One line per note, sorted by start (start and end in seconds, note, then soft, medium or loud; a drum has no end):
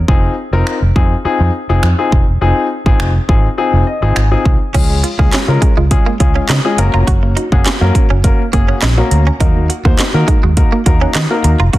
0.08 0.26 F1 loud
0.08 0.33 C4 medium
0.08 0.33 D#4 medium
0.08 0.33 F4 medium
0.08 0.33 G#4 loud
0.08 kick loud
0.53 0.61 F1 loud
0.53 0.77 C4 medium
0.53 0.77 D#4 medium
0.53 0.77 F4 medium
0.53 0.77 A#4 loud
0.67 finger snap loud
0.82 0.90 F1 medium
0.96 1.13 F2 medium
0.96 1.13 C4 medium
0.96 1.13 D#4 medium
0.96 1.13 F4 medium
0.96 1.13 G#4 medium
0.96 kick medium
1.25 1.49 C4 medium
1.25 1.49 D#4 medium
1.25 1.50 F4 medium
1.25 1.50 G#4 medium
1.25 muted fingered electric bass stroke soft
1.40 1.49 F2 medium
1.69 1.78 F1 medium
1.69 1.85 C4 medium
1.69 1.85 D#4 medium
1.69 1.85 F4 medium
1.69 1.85 G#4 medium
1.83 1.92 F2 loud
1.83 finger snap loud
1.98 2.22 C4 medium
1.98 2.23 D#4 medium
1.98 2.23 F4 medium
1.98 2.23 G#4 medium
2.12 2.22 F1 medium
2.12 kick medium
2.28 2.36 E1 medium
2.41 2.51 F1 medium
2.41 2.66 C4 medium
2.41 2.66 D#4 medium
2.41 2.66 F4 medium
2.41 2.66 G#4 medium
2.86 2.94 G#1 medium
2.86 3.10 C4 medium
2.86 3.10 D#4 medium
2.86 3.10 F4 medium
2.86 3.10 G#4 medium
2.86 kick medium
3.00 3.17 F1 medium
3.00 finger snap loud
3.29 3.46 G#1 medium
3.29 3.46 C4 medium
3.29 3.46 D#4 medium
3.29 3.46 F4 medium
3.29 3.46 G#4 medium
3.29 kick medium
3.58 3.82 C4 medium
3.58 3.82 D#4 medium
3.58 3.83 F4 medium
3.58 3.83 G#4 medium
3.73 3.82 F1 medium
3.87 4.14 D#5 medium
4.02 4.11 G#1 medium
4.02 4.18 C4 medium
4.02 4.18 D#4 medium
4.02 4.18 F4 medium
4.02 4.18 G#4 medium
4.16 4.34 G#1 medium
4.16 finger snap loud
4.31 4.55 C4 medium
4.31 4.55 D#4 medium
4.31 4.56 F4 medium
4.31 4.56 G#4 medium
4.45 4.55 C2 medium
4.45 kick medium
4.74 5.01 C#2 loud
4.74 4.82 F3 loud
4.74 4.99 G#3 medium
4.74 4.99 C#4 medium
4.74 4.84 C#4 medium
4.74 4.99 F4 medium
4.74 4.99 G#4 medium
4.74 kick loud
4.74 closed hi-hat medium
4.74 crash medium
4.90 4.97 G#3 medium
5.04 5.11 F4 medium
5.04 muted clean electric guitar stroke soft
5.04 closed hi-hat medium
5.19 5.27 C#2 medium
5.19 5.34 G#3 medium
5.19 5.28 A#3 medium
5.19 5.34 C#4 medium
5.19 5.34 F4 medium
5.19 5.34 G#4 loud
5.19 5.26 F5 medium
5.19 kick medium
5.33 5.40 C#4 medium
5.33 muted clean electric guitar stroke soft
5.33 muted fingered electric bass stroke soft
5.33 snare medium
5.33 clap loud
5.33 closed hi-hat medium
5.48 5.56 C#3 medium
5.48 5.72 G#3 medium
5.48 5.72 C#4 medium
5.48 5.55 F4 medium
5.48 5.72 F4 medium
5.48 5.72 A#4 loud
5.62 5.72 G#3 medium
5.62 5.70 C#4 medium
5.62 kick medium
5.62 closed hi-hat medium
5.77 5.95 C#2 medium
5.77 5.86 G#3 medium
5.77 5.84 F4 medium
5.91 6.08 G#3 medium
5.91 6.08 C#4 medium
5.91 6.08 F4 medium
5.91 6.08 G#4 medium
5.91 kick medium
5.91 closed hi-hat medium
6.06 6.13 G#3 medium
6.06 6.15 A#3 medium
6.20 6.38 C#2 medium
6.20 6.45 G#3 medium
6.20 6.45 C#4 medium
6.20 6.28 F4 medium
6.20 6.45 F4 medium
6.20 6.45 G#4 medium
6.20 muted clean electric guitar stroke soft
6.20 kick medium
6.20 closed hi-hat medium
6.35 6.44 C#4 medium
6.35 6.42 F5 medium
6.49 6.59 C#3 loud
6.49 6.57 C#4 medium
6.49 6.59 D#4 medium
6.49 snare medium
6.49 clap loud
6.49 closed hi-hat medium
6.64 6.78 G#3 medium
6.64 6.77 C#4 medium
6.64 6.71 F4 medium
6.64 6.78 F4 medium
6.64 6.78 G#4 medium
6.78 6.88 F#1 loud
6.78 7.36 A#3 medium
6.78 7.37 C#4 medium
6.78 7.37 F#4 medium
6.78 7.37 A#4 loud
6.78 6.86 A#5 medium
6.78 muted clean electric guitar stroke soft
6.78 closed hi-hat medium
6.94 7.02 F1 medium
6.94 7.03 F4 medium
6.94 7.01 A#5 medium
7.07 7.34 F#1 loud
7.07 7.15 F#3 loud
7.07 7.17 F#4 medium
7.07 kick loud
7.07 closed hi-hat medium
7.23 7.30 A#3 medium
7.23 muted clean electric guitar stroke soft
7.37 7.47 D#4 medium
7.37 7.44 F#4 medium
7.37 closed hi-hat medium
7.52 7.60 F#1 medium
7.52 7.67 A#3 medium
7.52 7.67 C#4 medium
7.52 7.67 F#4 medium
7.52 7.68 G#4 medium
7.52 7.59 F#5 medium
7.52 kick medium
7.66 7.73 C#4 medium
7.66 7.76 C#4 medium
7.66 muted fingered electric bass stroke soft
7.66 snare medium
7.66 clap loud
7.66 closed hi-hat medium
7.81 7.90 F#2 loud
7.81 8.05 A#3 medium
7.81 8.05 C#4 medium
7.81 7.88 F#4 medium
7.81 8.05 F#4 medium
7.81 8.05 A#4 medium
7.81 muted clean electric guitar stroke soft
7.95 8.03 C#4 medium
7.95 kick medium
7.95 closed hi-hat medium
8.10 8.28 F#1 medium
8.10 8.19 C#4 medium
8.10 8.17 F#4 medium
8.24 8.41 A#3 medium
8.24 8.41 C#4 medium
8.24 8.41 F#4 medium
8.24 8.41 A#4 medium
8.24 muted clean electric guitar stroke soft
8.24 kick medium
8.24 closed hi-hat medium
8.39 8.46 A#3 medium
8.53 8.71 F#1 medium
8.53 8.78 A#3 medium
8.53 8.63 A#3 medium
8.53 8.78 C#4 medium
8.53 8.61 F#4 medium
8.53 8.78 F#4 medium
8.53 8.78 G#4 loud
8.53 kick medium
8.53 closed hi-hat medium
8.68 8.77 C#4 medium
8.68 8.75 F#5 medium
8.82 9.00 A#1 medium
8.82 8.90 C#4 medium
8.82 8.92 D#4 medium
8.82 snare medium
8.82 clap loud
8.82 closed hi-hat medium
8.98 9.22 A#3 medium
8.98 9.22 C#4 medium
8.98 9.04 F#4 medium
8.98 9.22 F#4 medium
8.98 9.22 A#4 medium
8.98 muted clean electric guitar stroke soft
9.11 9.29 D2 medium
9.11 9.19 A#5 medium
9.11 closed hi-hat medium
9.27 9.36 C#4 medium
9.27 9.34 A#5 medium
9.40 9.67 D#2 loud
9.40 9.48 F#3 loud
9.40 9.65 A#3 medium
9.40 9.65 D#4 medium
9.40 9.50 D#4 medium
9.40 9.65 F#4 medium
9.40 9.65 A#4 medium
9.40 kick loud
9.40 closed hi-hat medium
9.56 9.63 A#3 medium
9.70 9.77 F#4 medium
9.70 muted clean electric guitar stroke soft
9.70 closed hi-hat medium
9.85 9.93 D#2 medium
9.85 10.00 A#3 medium
9.85 9.94 A#3 medium
9.85 10.00 D#4 medium
9.85 10.01 F#4 medium
9.85 10.01 C5 loud
9.85 9.92 F#5 medium
9.85 kick medium
9.99 10.06 D#4 medium
9.99 muted clean electric guitar stroke soft
9.99 muted fingered electric bass stroke soft
9.99 snare medium
9.99 clap loud
9.99 closed hi-hat medium
10.14 10.22 D#3 loud
10.14 10.38 A#3 medium
10.14 10.38 D#4 medium
10.14 10.21 F#4 medium
10.14 10.38 F#4 medium
10.14 10.38 A#4 loud
10.28 10.38 G#3 medium
10.28 10.35 D#4 medium
10.28 kick medium
10.28 closed hi-hat medium
10.43 10.61 D#2 medium
10.43 10.52 G#3 medium
10.43 10.50 F#4 medium
10.57 10.74 A#3 medium
10.57 10.74 D#4 medium
10.57 10.74 F#4 medium
10.57 10.74 A#4 medium
10.57 kick medium
10.57 closed hi-hat medium
10.72 10.81 A#3 medium
10.72 10.79 A#3 medium
10.86 11.04 D#2 medium
10.86 11.11 A#3 medium
10.86 11.11 D#4 medium
10.86 10.94 F#4 medium
10.86 11.11 F#4 medium
10.86 11.11 A#4 medium
10.86 muted clean electric guitar stroke soft
10.86 kick medium
10.86 closed hi-hat medium
11.01 11.10 C#4 medium
11.01 11.08 F#5 medium
11.15 11.25 D#3 loud
11.15 11.23 D#4 medium
11.15 11.25 D#4 medium
11.15 snare medium
11.15 clap loud
11.15 closed hi-hat medium
11.30 11.54 A#3 medium
11.30 11.55 D#4 medium
11.30 11.37 F#4 medium
11.30 11.55 F#4 medium
11.30 11.55 A#4 medium
11.44 11.54 D#2 medium
11.44 11.52 A#5 medium
11.44 muted clean electric guitar stroke soft
11.44 closed hi-hat medium
11.60 11.68 F1 medium
11.60 11.69 F4 medium
11.60 11.67 A#5 medium
11.73 11.78 F#1 loud
11.73 11.78 F#3 loud
11.73 11.78 A#3 medium
11.73 11.78 C#4 medium
11.73 11.78 F#4 medium
11.73 11.78 A#4 medium
11.73 kick loud
11.73 closed hi-hat medium